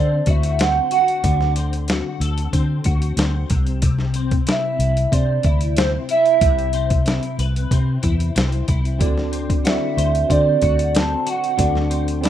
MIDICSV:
0, 0, Header, 1, 6, 480
1, 0, Start_track
1, 0, Tempo, 646552
1, 920, Time_signature, 4, 2, 24, 8
1, 9126, End_track
2, 0, Start_track
2, 0, Title_t, "Soft synth lead"
2, 0, Program_c, 0, 80
2, 0, Note_on_c, 0, 74, 90
2, 223, Note_on_c, 0, 76, 100
2, 235, Note_off_c, 0, 74, 0
2, 458, Note_on_c, 0, 78, 110
2, 469, Note_off_c, 0, 76, 0
2, 689, Note_off_c, 0, 78, 0
2, 693, Note_on_c, 0, 78, 106
2, 1137, Note_off_c, 0, 78, 0
2, 3341, Note_on_c, 0, 76, 105
2, 3813, Note_on_c, 0, 74, 95
2, 3824, Note_off_c, 0, 76, 0
2, 4286, Note_off_c, 0, 74, 0
2, 4290, Note_on_c, 0, 72, 88
2, 4394, Note_off_c, 0, 72, 0
2, 4535, Note_on_c, 0, 76, 99
2, 5460, Note_off_c, 0, 76, 0
2, 7178, Note_on_c, 0, 76, 93
2, 7661, Note_on_c, 0, 74, 88
2, 7673, Note_off_c, 0, 76, 0
2, 8151, Note_on_c, 0, 81, 102
2, 8162, Note_off_c, 0, 74, 0
2, 8376, Note_off_c, 0, 81, 0
2, 8386, Note_on_c, 0, 78, 104
2, 9126, Note_off_c, 0, 78, 0
2, 9126, End_track
3, 0, Start_track
3, 0, Title_t, "Tine electric piano"
3, 0, Program_c, 1, 4
3, 6673, Note_on_c, 1, 60, 81
3, 6680, Note_on_c, 1, 66, 76
3, 6688, Note_on_c, 1, 69, 71
3, 6694, Note_on_c, 1, 74, 91
3, 6828, Control_c, 1, 64, 127
3, 7064, Note_off_c, 1, 60, 0
3, 7067, Note_off_c, 1, 66, 0
3, 7071, Note_off_c, 1, 69, 0
3, 7074, Note_off_c, 1, 74, 0
3, 7158, Note_on_c, 1, 60, 66
3, 7162, Note_on_c, 1, 66, 60
3, 7169, Note_on_c, 1, 69, 61
3, 7175, Note_on_c, 1, 74, 73
3, 7546, Note_off_c, 1, 60, 0
3, 7548, Note_off_c, 1, 66, 0
3, 7551, Note_off_c, 1, 69, 0
3, 7554, Note_off_c, 1, 74, 0
3, 7637, Note_on_c, 1, 60, 73
3, 7641, Note_on_c, 1, 66, 64
3, 7648, Note_on_c, 1, 69, 61
3, 7652, Note_on_c, 1, 74, 75
3, 8411, Note_off_c, 1, 60, 0
3, 8412, Note_off_c, 1, 66, 0
3, 8416, Note_off_c, 1, 69, 0
3, 8418, Note_off_c, 1, 74, 0
3, 8591, Note_on_c, 1, 60, 68
3, 8596, Note_on_c, 1, 66, 65
3, 8603, Note_on_c, 1, 69, 63
3, 8609, Note_on_c, 1, 74, 70
3, 8982, Note_off_c, 1, 60, 0
3, 8984, Note_off_c, 1, 66, 0
3, 8988, Note_off_c, 1, 69, 0
3, 8990, Note_off_c, 1, 74, 0
3, 9068, Note_on_c, 1, 60, 80
3, 9075, Note_on_c, 1, 64, 58
3, 9079, Note_on_c, 1, 69, 75
3, 9087, Note_on_c, 1, 74, 86
3, 9126, Note_off_c, 1, 60, 0
3, 9126, Note_off_c, 1, 64, 0
3, 9126, Note_off_c, 1, 69, 0
3, 9126, Note_off_c, 1, 74, 0
3, 9126, End_track
4, 0, Start_track
4, 0, Title_t, "Clean electric guitar"
4, 0, Program_c, 2, 27
4, 0, Note_on_c, 2, 50, 79
4, 0, Note_on_c, 2, 60, 61
4, 0, Note_on_c, 2, 66, 57
4, 0, Note_on_c, 2, 69, 62
4, 194, Note_off_c, 2, 66, 0
4, 203, Note_on_c, 2, 66, 56
4, 446, Note_off_c, 2, 60, 0
4, 449, Note_on_c, 2, 60, 53
4, 669, Note_off_c, 2, 66, 0
4, 678, Note_on_c, 2, 66, 56
4, 908, Note_off_c, 2, 50, 0
4, 917, Note_on_c, 2, 50, 79
4, 1155, Note_off_c, 2, 60, 0
4, 1158, Note_on_c, 2, 60, 54
4, 1392, Note_off_c, 2, 66, 0
4, 1401, Note_on_c, 2, 66, 58
4, 1631, Note_off_c, 2, 69, 0
4, 1640, Note_on_c, 2, 69, 57
4, 1875, Note_off_c, 2, 60, 0
4, 1878, Note_on_c, 2, 60, 62
4, 2108, Note_off_c, 2, 66, 0
4, 2117, Note_on_c, 2, 66, 57
4, 2356, Note_off_c, 2, 60, 0
4, 2359, Note_on_c, 2, 60, 56
4, 2596, Note_on_c, 2, 48, 79
4, 2648, Note_off_c, 2, 50, 0
4, 2648, Note_off_c, 2, 66, 0
4, 2649, Note_off_c, 2, 69, 0
4, 2835, Note_off_c, 2, 48, 0
4, 2844, Note_on_c, 2, 48, 83
4, 3081, Note_off_c, 2, 60, 0
4, 3084, Note_on_c, 2, 60, 60
4, 3320, Note_on_c, 2, 64, 59
4, 3801, Note_off_c, 2, 60, 0
4, 3804, Note_on_c, 2, 60, 59
4, 4038, Note_off_c, 2, 64, 0
4, 4047, Note_on_c, 2, 64, 58
4, 4286, Note_off_c, 2, 60, 0
4, 4289, Note_on_c, 2, 60, 55
4, 4523, Note_off_c, 2, 64, 0
4, 4532, Note_on_c, 2, 64, 56
4, 4757, Note_off_c, 2, 48, 0
4, 4766, Note_on_c, 2, 48, 79
4, 5000, Note_off_c, 2, 60, 0
4, 5003, Note_on_c, 2, 60, 58
4, 5239, Note_off_c, 2, 64, 0
4, 5248, Note_on_c, 2, 64, 56
4, 5489, Note_on_c, 2, 71, 59
4, 5724, Note_off_c, 2, 60, 0
4, 5727, Note_on_c, 2, 60, 58
4, 5950, Note_off_c, 2, 64, 0
4, 5959, Note_on_c, 2, 64, 57
4, 6200, Note_off_c, 2, 60, 0
4, 6203, Note_on_c, 2, 60, 57
4, 6435, Note_off_c, 2, 64, 0
4, 6444, Note_on_c, 2, 64, 56
4, 6682, Note_on_c, 2, 50, 77
4, 6685, Note_off_c, 2, 48, 0
4, 6732, Note_off_c, 2, 64, 0
4, 6734, Note_off_c, 2, 71, 0
4, 6913, Note_off_c, 2, 60, 0
4, 6916, Note_on_c, 2, 60, 53
4, 7161, Note_on_c, 2, 66, 57
4, 7407, Note_on_c, 2, 72, 59
4, 7644, Note_off_c, 2, 60, 0
4, 7647, Note_on_c, 2, 60, 60
4, 7876, Note_off_c, 2, 66, 0
4, 7885, Note_on_c, 2, 66, 59
4, 8129, Note_off_c, 2, 60, 0
4, 8132, Note_on_c, 2, 60, 58
4, 8354, Note_off_c, 2, 66, 0
4, 8363, Note_on_c, 2, 66, 60
4, 8583, Note_off_c, 2, 50, 0
4, 8592, Note_on_c, 2, 50, 73
4, 8833, Note_off_c, 2, 60, 0
4, 8836, Note_on_c, 2, 60, 57
4, 9080, Note_off_c, 2, 66, 0
4, 9083, Note_on_c, 2, 64, 58
4, 9126, Note_off_c, 2, 50, 0
4, 9126, Note_off_c, 2, 60, 0
4, 9126, Note_off_c, 2, 64, 0
4, 9126, Note_off_c, 2, 72, 0
4, 9126, End_track
5, 0, Start_track
5, 0, Title_t, "Fingered electric bass"
5, 0, Program_c, 3, 33
5, 0, Note_on_c, 3, 50, 95
5, 152, Note_off_c, 3, 50, 0
5, 201, Note_on_c, 3, 38, 82
5, 585, Note_off_c, 3, 38, 0
5, 922, Note_on_c, 3, 38, 95
5, 1492, Note_off_c, 3, 38, 0
5, 1634, Note_on_c, 3, 38, 90
5, 1829, Note_off_c, 3, 38, 0
5, 1881, Note_on_c, 3, 50, 97
5, 2073, Note_off_c, 3, 50, 0
5, 2118, Note_on_c, 3, 38, 82
5, 2311, Note_off_c, 3, 38, 0
5, 2352, Note_on_c, 3, 38, 88
5, 2548, Note_off_c, 3, 38, 0
5, 2603, Note_on_c, 3, 36, 82
5, 3275, Note_off_c, 3, 36, 0
5, 3558, Note_on_c, 3, 36, 88
5, 3752, Note_off_c, 3, 36, 0
5, 3800, Note_on_c, 3, 48, 92
5, 3993, Note_off_c, 3, 48, 0
5, 4043, Note_on_c, 3, 38, 87
5, 4427, Note_off_c, 3, 38, 0
5, 4762, Note_on_c, 3, 36, 93
5, 5333, Note_off_c, 3, 36, 0
5, 5484, Note_on_c, 3, 36, 90
5, 5676, Note_off_c, 3, 36, 0
5, 5725, Note_on_c, 3, 48, 99
5, 5917, Note_off_c, 3, 48, 0
5, 5965, Note_on_c, 3, 40, 85
5, 6156, Note_off_c, 3, 40, 0
5, 6207, Note_on_c, 3, 36, 87
5, 6397, Note_off_c, 3, 36, 0
5, 6446, Note_on_c, 3, 36, 79
5, 6687, Note_off_c, 3, 36, 0
5, 6687, Note_on_c, 3, 38, 92
5, 7255, Note_off_c, 3, 38, 0
5, 7404, Note_on_c, 3, 38, 84
5, 7595, Note_off_c, 3, 38, 0
5, 7648, Note_on_c, 3, 50, 89
5, 7838, Note_off_c, 3, 50, 0
5, 7889, Note_on_c, 3, 38, 79
5, 8270, Note_off_c, 3, 38, 0
5, 8604, Note_on_c, 3, 38, 95
5, 9126, Note_off_c, 3, 38, 0
5, 9126, End_track
6, 0, Start_track
6, 0, Title_t, "Drums"
6, 193, Note_on_c, 9, 42, 65
6, 201, Note_on_c, 9, 36, 81
6, 268, Note_off_c, 9, 42, 0
6, 275, Note_off_c, 9, 36, 0
6, 322, Note_on_c, 9, 42, 50
6, 396, Note_off_c, 9, 42, 0
6, 438, Note_on_c, 9, 42, 83
6, 451, Note_on_c, 9, 38, 100
6, 513, Note_off_c, 9, 42, 0
6, 526, Note_off_c, 9, 38, 0
6, 675, Note_on_c, 9, 42, 62
6, 750, Note_off_c, 9, 42, 0
6, 803, Note_on_c, 9, 42, 39
6, 877, Note_off_c, 9, 42, 0
6, 919, Note_on_c, 9, 42, 83
6, 921, Note_on_c, 9, 36, 99
6, 993, Note_off_c, 9, 42, 0
6, 995, Note_off_c, 9, 36, 0
6, 1044, Note_on_c, 9, 38, 29
6, 1119, Note_off_c, 9, 38, 0
6, 1157, Note_on_c, 9, 42, 64
6, 1231, Note_off_c, 9, 42, 0
6, 1284, Note_on_c, 9, 42, 49
6, 1358, Note_off_c, 9, 42, 0
6, 1395, Note_on_c, 9, 42, 68
6, 1409, Note_on_c, 9, 38, 98
6, 1469, Note_off_c, 9, 42, 0
6, 1483, Note_off_c, 9, 38, 0
6, 1644, Note_on_c, 9, 42, 66
6, 1718, Note_off_c, 9, 42, 0
6, 1764, Note_on_c, 9, 42, 51
6, 1838, Note_off_c, 9, 42, 0
6, 1879, Note_on_c, 9, 36, 77
6, 1881, Note_on_c, 9, 42, 76
6, 1954, Note_off_c, 9, 36, 0
6, 1955, Note_off_c, 9, 42, 0
6, 2110, Note_on_c, 9, 42, 67
6, 2121, Note_on_c, 9, 36, 87
6, 2185, Note_off_c, 9, 42, 0
6, 2195, Note_off_c, 9, 36, 0
6, 2240, Note_on_c, 9, 42, 51
6, 2315, Note_off_c, 9, 42, 0
6, 2354, Note_on_c, 9, 42, 82
6, 2367, Note_on_c, 9, 38, 101
6, 2428, Note_off_c, 9, 42, 0
6, 2441, Note_off_c, 9, 38, 0
6, 2596, Note_on_c, 9, 42, 65
6, 2603, Note_on_c, 9, 36, 84
6, 2670, Note_off_c, 9, 42, 0
6, 2677, Note_off_c, 9, 36, 0
6, 2721, Note_on_c, 9, 42, 35
6, 2796, Note_off_c, 9, 42, 0
6, 2836, Note_on_c, 9, 42, 81
6, 2839, Note_on_c, 9, 36, 97
6, 2910, Note_off_c, 9, 42, 0
6, 2913, Note_off_c, 9, 36, 0
6, 2959, Note_on_c, 9, 38, 32
6, 3033, Note_off_c, 9, 38, 0
6, 3072, Note_on_c, 9, 42, 67
6, 3146, Note_off_c, 9, 42, 0
6, 3202, Note_on_c, 9, 42, 47
6, 3204, Note_on_c, 9, 36, 84
6, 3276, Note_off_c, 9, 42, 0
6, 3279, Note_off_c, 9, 36, 0
6, 3317, Note_on_c, 9, 42, 67
6, 3330, Note_on_c, 9, 38, 100
6, 3391, Note_off_c, 9, 42, 0
6, 3405, Note_off_c, 9, 38, 0
6, 3563, Note_on_c, 9, 42, 75
6, 3637, Note_off_c, 9, 42, 0
6, 3688, Note_on_c, 9, 42, 52
6, 3763, Note_off_c, 9, 42, 0
6, 3802, Note_on_c, 9, 36, 72
6, 3806, Note_on_c, 9, 42, 75
6, 3876, Note_off_c, 9, 36, 0
6, 3880, Note_off_c, 9, 42, 0
6, 4034, Note_on_c, 9, 42, 61
6, 4043, Note_on_c, 9, 36, 83
6, 4108, Note_off_c, 9, 42, 0
6, 4117, Note_off_c, 9, 36, 0
6, 4162, Note_on_c, 9, 42, 49
6, 4237, Note_off_c, 9, 42, 0
6, 4280, Note_on_c, 9, 42, 90
6, 4293, Note_on_c, 9, 38, 105
6, 4354, Note_off_c, 9, 42, 0
6, 4367, Note_off_c, 9, 38, 0
6, 4520, Note_on_c, 9, 42, 68
6, 4594, Note_off_c, 9, 42, 0
6, 4644, Note_on_c, 9, 42, 38
6, 4718, Note_off_c, 9, 42, 0
6, 4761, Note_on_c, 9, 42, 81
6, 4763, Note_on_c, 9, 36, 97
6, 4835, Note_off_c, 9, 42, 0
6, 4837, Note_off_c, 9, 36, 0
6, 4889, Note_on_c, 9, 42, 33
6, 4963, Note_off_c, 9, 42, 0
6, 4996, Note_on_c, 9, 42, 63
6, 5070, Note_off_c, 9, 42, 0
6, 5125, Note_on_c, 9, 42, 47
6, 5127, Note_on_c, 9, 36, 88
6, 5199, Note_off_c, 9, 42, 0
6, 5201, Note_off_c, 9, 36, 0
6, 5240, Note_on_c, 9, 42, 65
6, 5254, Note_on_c, 9, 38, 90
6, 5314, Note_off_c, 9, 42, 0
6, 5328, Note_off_c, 9, 38, 0
6, 5366, Note_on_c, 9, 42, 35
6, 5440, Note_off_c, 9, 42, 0
6, 5487, Note_on_c, 9, 42, 70
6, 5561, Note_off_c, 9, 42, 0
6, 5615, Note_on_c, 9, 42, 50
6, 5689, Note_off_c, 9, 42, 0
6, 5725, Note_on_c, 9, 36, 77
6, 5729, Note_on_c, 9, 42, 75
6, 5799, Note_off_c, 9, 36, 0
6, 5803, Note_off_c, 9, 42, 0
6, 5960, Note_on_c, 9, 42, 65
6, 5967, Note_on_c, 9, 36, 81
6, 6035, Note_off_c, 9, 42, 0
6, 6041, Note_off_c, 9, 36, 0
6, 6088, Note_on_c, 9, 42, 51
6, 6163, Note_off_c, 9, 42, 0
6, 6206, Note_on_c, 9, 42, 87
6, 6219, Note_on_c, 9, 38, 103
6, 6280, Note_off_c, 9, 42, 0
6, 6293, Note_off_c, 9, 38, 0
6, 6328, Note_on_c, 9, 42, 32
6, 6402, Note_off_c, 9, 42, 0
6, 6443, Note_on_c, 9, 42, 67
6, 6448, Note_on_c, 9, 36, 81
6, 6517, Note_off_c, 9, 42, 0
6, 6523, Note_off_c, 9, 36, 0
6, 6572, Note_on_c, 9, 42, 39
6, 6647, Note_off_c, 9, 42, 0
6, 6686, Note_on_c, 9, 36, 94
6, 6686, Note_on_c, 9, 42, 82
6, 6760, Note_off_c, 9, 36, 0
6, 6760, Note_off_c, 9, 42, 0
6, 6812, Note_on_c, 9, 38, 30
6, 6886, Note_off_c, 9, 38, 0
6, 6925, Note_on_c, 9, 42, 65
6, 6999, Note_off_c, 9, 42, 0
6, 7051, Note_on_c, 9, 36, 88
6, 7052, Note_on_c, 9, 42, 45
6, 7125, Note_off_c, 9, 36, 0
6, 7127, Note_off_c, 9, 42, 0
6, 7164, Note_on_c, 9, 42, 63
6, 7178, Note_on_c, 9, 38, 104
6, 7238, Note_off_c, 9, 42, 0
6, 7252, Note_off_c, 9, 38, 0
6, 7412, Note_on_c, 9, 42, 68
6, 7486, Note_off_c, 9, 42, 0
6, 7534, Note_on_c, 9, 42, 53
6, 7609, Note_off_c, 9, 42, 0
6, 7647, Note_on_c, 9, 36, 77
6, 7650, Note_on_c, 9, 42, 73
6, 7721, Note_off_c, 9, 36, 0
6, 7725, Note_off_c, 9, 42, 0
6, 7881, Note_on_c, 9, 42, 64
6, 7887, Note_on_c, 9, 36, 84
6, 7955, Note_off_c, 9, 42, 0
6, 7962, Note_off_c, 9, 36, 0
6, 8011, Note_on_c, 9, 42, 50
6, 8086, Note_off_c, 9, 42, 0
6, 8127, Note_on_c, 9, 42, 85
6, 8140, Note_on_c, 9, 38, 111
6, 8201, Note_off_c, 9, 42, 0
6, 8214, Note_off_c, 9, 38, 0
6, 8364, Note_on_c, 9, 42, 65
6, 8438, Note_off_c, 9, 42, 0
6, 8491, Note_on_c, 9, 42, 39
6, 8565, Note_off_c, 9, 42, 0
6, 8602, Note_on_c, 9, 42, 84
6, 8604, Note_on_c, 9, 36, 95
6, 8676, Note_off_c, 9, 42, 0
6, 8678, Note_off_c, 9, 36, 0
6, 8726, Note_on_c, 9, 38, 31
6, 8800, Note_off_c, 9, 38, 0
6, 8841, Note_on_c, 9, 42, 70
6, 8915, Note_off_c, 9, 42, 0
6, 8968, Note_on_c, 9, 42, 47
6, 9042, Note_off_c, 9, 42, 0
6, 9083, Note_on_c, 9, 42, 67
6, 9097, Note_on_c, 9, 38, 96
6, 9126, Note_off_c, 9, 38, 0
6, 9126, Note_off_c, 9, 42, 0
6, 9126, End_track
0, 0, End_of_file